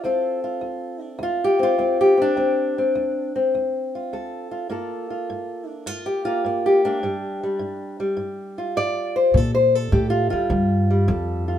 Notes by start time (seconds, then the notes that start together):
0.04 D2 C4 F4 A4
0.44 F4
0.61 D2
1.01 D4
1.19 D2
1.23 F4
1.44 G4
1.59 C4 F4
1.78 D2 C4
2.01 G4
2.17 C4
2.22 D4
2.36 D2 C4
2.78 C4
2.95 D2
3.36 C4
3.55 D2
3.95 F4
4.13 D2 A4
4.51 F4
4.70 G2 A#3 F4 A4
5.10 F4
5.30 G2
5.67 D4
5.86 G2 F4
6.06 G4
6.25 A#3 F4
6.45 G2 A#3
6.66 G4
6.85 A#3 D4
7.03 G2 G3
7.43 G3
7.59 G2
8.00 G3
8.17 G2
8.58 F4
8.76 G2 D5
9.16 C5
9.34 G2 A#2 A4
9.55 C5
9.75 A4
9.92 G2 A2 G4
10.10 F4
10.30 G3 F4, muted upright bass stroke
10.50 G2
10.90 G3
11.08 F2 G2 A4
11.48 F4